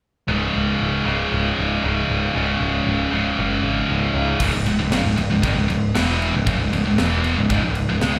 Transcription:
0.27 C#1 C#2 G#2 C#3
0.56 C#1
0.81 C#1
1.05 C#1 C#2 G#2 C#3
1.32 C#1
1.58 C#1
1.83 C#1 C#2 G#2 C#3
2.09 C#1
2.34 C#1 C#2 G#2 C#3
2.60 C#1
2.87 C#1
3.12 C#1 C#2 G#2 C#3
3.39 F#1
3.63 G#1
3.89 C#1 C#2 G#2 C#3
4.14 C#2
4.40 C#1 C#2 G#2, kick, crash
4.54 C#1 C#2 G#2
4.66 C#1 C#2 G#2, crash
4.79 C#1 C#2 G#2
4.91 F#1 F#2 C#3, snare, crash
5.05 C#1 C#2 G#2
5.17 C#1 C#2 G#2, crash
5.30 C#1 C#2 G#2
5.43 G#1 G#2 D#3, kick, crash
5.56 C#1 C#2 G#2
5.70 C#1 C#2 G#2, crash
5.95 E1 E2 B2 E3, snare, crash
6.22 crash
6.34 C#1 C#2 G#2
6.47 F#1 F#2 C#3, kick, crash
6.58 C#1 C#2 G#2
6.72 C#1 C#2 G#2, crash
6.85 C#1 C#2 G#2
6.97 E1 E2 B2 E3, snare, crash
7.24 crash
7.36 C#1 C#2 G#2
7.50 C#1 C#2 G#2, kick, crash
7.63 C#1 C#2 G#2
7.75 crash
7.89 C#1 C#2 G#2
8.01 C#2 C#3 G#3, snare, crash
8.14 C#1 C#2 G#2

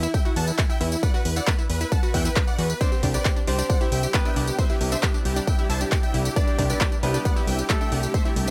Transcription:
0.03 E4, closed hi-hat, tambourine
0.14 E5 G5, kick, closed hi-hat, tambourine
0.25 E4 F#4, closed hi-hat, tambourine
0.36 E2 F#5 A5, open hi-hat
0.47 E4, closed hi-hat, tambourine
0.58 E4, kick, clap, closed hi-hat, tambourine
0.69 E4 E5 G5, closed hi-hat, tambourine
0.81 E2 E4, open hi-hat
0.92 E4, closed hi-hat, tambourine
1.03 B4 D5 F#5, kick, closed hi-hat, tambourine
1.14 F#4 B4, closed hi-hat, tambourine
1.25 E2 B4, open hi-hat
1.36 E4 D5 F#5, closed hi-hat, tambourine
1.47 B4 F#5, kick, clap, closed hi-hat, tambourine
1.59 E4, closed hi-hat, tambourine
1.70 E2 B4, open hi-hat
1.81 E4 B4, closed hi-hat, tambourine
1.92 F#5 A5, kick, closed hi-hat, tambourine
2.03 F#4 B4, closed hi-hat, tambourine
2.14 E2 E5 F#5 G5, kick, open hi-hat
2.25 E4 B4, closed hi-hat, tambourine
2.36 B4, kick, clap, closed hi-hat, tambourine
2.47 D5 F#5, closed hi-hat, tambourine
2.58 E2 F#4 B4, open hi-hat
2.70 B4, closed hi-hat, tambourine
2.81 C3 G3 C4 D4 E4 B4 C5 D5, kick, closed hi-hat, tambourine
2.92 G4, closed hi-hat, tambourine
3.03 C2 D4 G4, kick, open hi-hat
3.14 G4 B4 D5, closed hi-hat, tambourine
3.25 G4 D5, kick, clap, closed hi-hat, tambourine
3.36 D4, closed hi-hat, tambourine
3.47 C2 C4 D4 G4 C5, open hi-hat
3.58 D4 G4, closed hi-hat, tambourine
3.70 D5 F#5, kick, closed hi-hat, tambourine
3.81 E4 G4, closed hi-hat, tambourine
3.92 C2 E5 G5, open hi-hat
4.03 G4, closed hi-hat, tambourine
4.14 B3 G4 B4, kick, clap, closed hi-hat, tambourine
4.25 D4 E5 G5, closed hi-hat, tambourine
4.36 C2 D4 G4, open hi-hat
4.47 G4, closed hi-hat, tambourine
4.58 C5 E5, kick, closed hi-hat, tambourine
4.70 E4 G4, closed hi-hat, tambourine
4.81 C2 G4, open hi-hat
4.92 D4 C5 E5, closed hi-hat, tambourine
5.03 G4 E5, kick, clap, closed hi-hat, tambourine
5.14 D4, closed hi-hat, tambourine
5.25 C2 G4, open hi-hat
5.36 D4 G4, closed hi-hat, tambourine
5.47 E5 G5, kick, closed hi-hat, tambourine
5.58 E4 G4, closed hi-hat, tambourine
5.70 C2 C5 E5 A5, open hi-hat
5.81 D4 G4, closed hi-hat, tambourine
5.92 G4, kick, clap, closed hi-hat, tambourine
6.03 E5 G5, closed hi-hat, tambourine
6.14 C2 E4 G4, open hi-hat
6.25 G4, closed hi-hat, tambourine
6.36 D4 B4 D5, kick, closed hi-hat, tambourine
6.47 G4, closed hi-hat, tambourine
6.58 C2 D4 G4, kick, open hi-hat
6.70 G4 B4 D5, closed hi-hat, tambourine
6.81 G4 D5, kick, clap, closed hi-hat, tambourine
6.92 D4, closed hi-hat, tambourine
7.03 C2 B3 D4 G4 B4, open hi-hat
7.14 D4 G4, closed hi-hat, tambourine
7.25 D5 F#5, kick, closed hi-hat, tambourine
7.36 E4 G4, closed hi-hat, tambourine
7.47 C2 E5 G5, open hi-hat
7.58 G4, closed hi-hat, tambourine
7.70 A3 G4 A4, kick, clap, closed hi-hat, tambourine
7.81 D4 E5 G5, closed hi-hat, tambourine
7.92 C2 D4 G4, open hi-hat
8.03 G4, closed hi-hat, tambourine
8.14 C5 E5, kick, closed hi-hat, tambourine
8.25 E4 G4, closed hi-hat, tambourine
8.36 C2 G4, open hi-hat
8.47 D4 E5

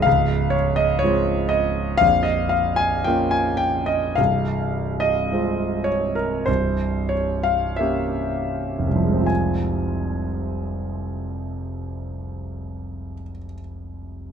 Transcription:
0.00 C#1 F5
0.06 C#2
0.50 C#5
0.76 D#5
0.99 G#3 C#5
1.03 C4 F4
1.49 D#5
1.98 A#0 A#1 F5
2.23 D#5
2.49 F5
2.76 G#5
3.04 A#3 C#4 F4 G5
3.31 G#5
3.57 G5
3.86 D#5
4.15 C1 C2 F5
5.00 D#5
5.32 G#3 C4 F4
5.84 C#5
6.15 A#4
6.46 C1 C2 C5
7.09 C#5
7.43 F5
7.76 A#3 C#4 G4 E5
8.79 F1
8.87 C2
8.96 F3
9.04 G#3
9.12 C4
9.21 F4
9.26 G#5

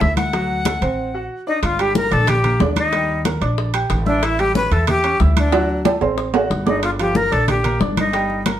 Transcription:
0.00 D2 E4 E5, high bongo, low bongo, high conga
0.17 F#5, high conga, high timbale
0.33 F#3 F#4, high bongo, high conga, high timbale
0.50 high conga
0.65 A3 A4, high bongo, high conga, high timbale
0.81 A1 C4 C5, high bongo, high conga, high timbale
1.14 F#4 F#5
1.47 D4 D#4 D5
1.63 G1 F4, high bongo, high conga, high timbale
1.79 G3 G4 G5, high conga, high timbale
1.95 A#3 A#4 A#5, high bongo, high conga
2.11 A#1 D4 A4 D5 D6, high timbale
2.27 G4, high bongo, high conga, low conga, high timbale
2.43 A#3 A#4 A#5, high conga, low conga, high timbale
2.60 D#2 D4 D5 D6, high bongo, low bongo, high conga, low timbale
2.76 D#4, high conga, high timbale
2.92 G3 G4 G5, high bongo, high conga, high timbale
3.09 high conga
3.25 A#3 A#4 A#5, high bongo, high conga, high timbale
3.41 A#1 D4 D5 D6, high bongo, high conga, high timbale
3.57 high bongo, high conga
3.74 G4 G5 G6, high bongo, high conga, high timbale
3.90 A1, high bongo, low bongo, high conga, high timbale
4.06 D4 E4 E5 E6, high bongo, high conga
4.23 E4, high bongo, high conga, high timbale
4.39 G3 G4 G5, high conga, high timbale
4.55 C#4 B4 C#5 C#6, high bongo, high conga
4.71 E2 E4 A4 E5 E6, high timbale
4.87 G4, high bongo, high conga, low conga, high timbale
5.04 C#4 C#5 C#6, high conga, high timbale
5.20 D2 E4 E5 E6, high bongo, low bongo, high conga
5.37 D4, high conga, high timbale
5.52 F#3 F#4 F#5, high bongo, high conga, high timbale
5.69 high conga
5.85 A3 A4 A5, high bongo, high conga, high timbale
6.01 A1 C4 C5 C6, high bongo, high conga, low timbale
6.18 high bongo, high conga
6.34 F#4 F#5 F#6, high bongo, high conga, low timbale
6.50 G1, high bongo, low bongo, high conga
6.66 D4 D#4 D5 D6, high bongo, high conga, low timbale
6.83 F4, high bongo, high conga, high timbale
6.99 F3 F4 G4 F5, high conga, high timbale
7.15 A#3 A#4 A#5, high bongo, high conga
7.31 A#1 D4 A4 D5 D6, high timbale
7.48 G4, high bongo, high conga, low conga, high timbale
7.63 A#3 A#4 A#5, high conga, low conga, high timbale
7.80 G1 D4 D5 D6, high bongo, low bongo, high conga
7.97 D#4, high conga, high timbale
8.13 G3 G4 G5, high bongo, high conga, high timbale
8.30 high conga
8.46 A#3 A#4 A#5, high bongo, high conga, high timbale

